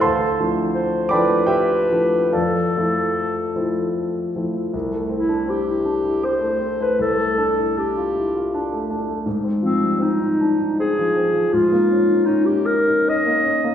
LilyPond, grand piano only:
\new Staff \with { instrumentName = "Grand piano" } { \time 3/4 \key c \major \tempo 4 = 79 << { <c'' f'' a'' c'''>4. <d'' g'' b'' d'''>8 <g' c'' e'' g''>4 | <a' d'' f'' a''>2~ <a' d'' f'' a''>8 r8 | r2. | r2. |
r2. | r2. | } \\ { d,8 <f a d' e'>4 <f a d' e'>4 <f a d' e'>8 | f,8 <f a c' e'>4 <f a c' e'>4 <f a c' e'>8 | c,16 a16 c'16 d'16 c'16 e'16 d'16 e'16 c'16 a16 c'16 a16 | c,16 a16 d'16 e'16 d'16 f'16 e'16 f'16 d'16 a16 d'16 a16 |
aes,16 c'16 f16 g16 c'16 ees'16 d'16 ees'16 c'16 f16 c'16 f16 | aes,16 bes16 des'16 ees'16 des'16 ees'16 des'16 ees'16 des'16 bes16 des'16 bes16 | } >> }